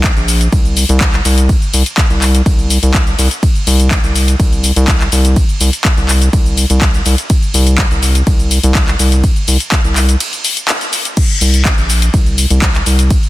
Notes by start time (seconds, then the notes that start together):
Already playing: C2
0.04 kick, clap, closed hi-hat, ride, shaker
0.17 A#1, closed hi-hat, shaker
0.28 open hi-hat, shaker
0.41 closed hi-hat, shaker
0.53 C2, kick, closed hi-hat, ride, shaker
0.65 closed hi-hat, shaker
0.77 open hi-hat, shaker
0.89 C2, closed hi-hat, shaker
1.01 kick, clap, closed hi-hat, ride, shaker
1.13 clap, closed hi-hat, shaker
1.25 C2, open hi-hat, shaker
1.38 closed hi-hat, shaker
1.49 kick, closed hi-hat, ride, shaker
1.62 closed hi-hat, shaker
1.74 C2, open hi-hat, shaker
1.86 closed hi-hat, shaker
1.98 kick, clap, closed hi-hat, ride, shaker
2.10 C2, closed hi-hat, shaker
2.22 clap, open hi-hat, shaker
2.35 closed hi-hat, shaker
2.46 C2, kick, closed hi-hat, ride, shaker
2.59 closed hi-hat, shaker
2.70 open hi-hat, shaker
2.83 C2, closed hi-hat, shaker
2.94 kick, clap, closed hi-hat, ride, shaker
3.07 closed hi-hat, shaker
3.19 C2, open hi-hat, shaker
3.31 closed hi-hat, shaker
3.43 kick, closed hi-hat, ride, shaker
3.55 closed hi-hat, shaker
3.67 C2, open hi-hat, shaker
3.80 closed hi-hat, shaker
3.91 kick, clap, closed hi-hat, ride, shaker
4.04 C2, closed hi-hat, shaker
4.16 open hi-hat, shaker
4.28 closed hi-hat, shaker
4.40 C2, kick, closed hi-hat, ride, shaker
4.52 closed hi-hat, shaker
4.64 open hi-hat, shaker
4.76 C2, closed hi-hat, shaker
4.88 kick, clap, closed hi-hat, ride, shaker
5.00 clap, closed hi-hat, shaker
5.12 C2, open hi-hat, shaker
5.25 closed hi-hat, shaker
5.36 kick, closed hi-hat, ride, shaker
5.49 closed hi-hat, shaker
5.61 C2, open hi-hat, shaker
5.73 closed hi-hat, shaker
5.85 kick, clap, closed hi-hat, ride, shaker
5.97 C2, closed hi-hat, shaker
6.09 clap, open hi-hat, shaker
6.22 closed hi-hat, shaker
6.33 C2, kick, closed hi-hat, ride, shaker
6.46 closed hi-hat, shaker
6.57 open hi-hat, shaker
6.70 C2, closed hi-hat, shaker
6.81 kick, clap, closed hi-hat, ride, shaker
6.94 closed hi-hat, shaker
7.06 C2, open hi-hat, shaker
7.18 closed hi-hat, shaker
7.30 kick, closed hi-hat, ride, shaker
7.42 closed hi-hat, shaker
7.54 C2, open hi-hat, shaker
7.67 closed hi-hat, shaker
7.78 kick, clap, closed hi-hat, ride, shaker
7.91 C2, closed hi-hat, shaker
8.03 open hi-hat, shaker
8.15 closed hi-hat, shaker
8.27 C2, kick, closed hi-hat, ride, shaker
8.39 closed hi-hat, shaker
8.51 open hi-hat, shaker
8.63 C2, closed hi-hat, shaker
8.75 kick, clap, closed hi-hat, ride, shaker
8.88 clap, closed hi-hat, shaker
8.99 C2, open hi-hat, shaker
9.12 closed hi-hat, shaker
9.24 kick, closed hi-hat, ride, shaker
9.36 closed hi-hat, shaker
9.48 C2, open hi-hat, shaker
9.60 closed hi-hat, shaker
9.72 kick, clap, closed hi-hat, ride, shaker
9.84 C2, closed hi-hat, shaker
9.96 clap, open hi-hat, shaker
10.09 closed hi-hat, shaker
10.20 closed hi-hat, ride, shaker
10.33 closed hi-hat, shaker
10.45 open hi-hat, shaker
10.57 closed hi-hat, shaker
10.68 clap, closed hi-hat, ride, shaker
10.81 closed hi-hat, shaker
10.93 open hi-hat, shaker
11.05 closed hi-hat, shaker
11.17 kick, closed hi-hat, crash, ride, shaker
11.30 closed hi-hat, shaker
11.41 C2, open hi-hat, shaker
11.54 closed hi-hat, shaker
11.65 kick, clap, closed hi-hat, ride, shaker
11.78 A#1, closed hi-hat, shaker
11.90 open hi-hat, shaker
12.02 closed hi-hat, shaker
12.14 C2, kick, closed hi-hat, ride, shaker
12.26 closed hi-hat, shaker
12.38 open hi-hat, shaker
12.50 C2, closed hi-hat, shaker
12.62 kick, clap, closed hi-hat, ride, shaker
12.74 clap, closed hi-hat, shaker
12.86 C2, open hi-hat, shaker
12.99 closed hi-hat, shaker
13.11 kick, closed hi-hat, ride, shaker
13.23 closed hi-hat, shaker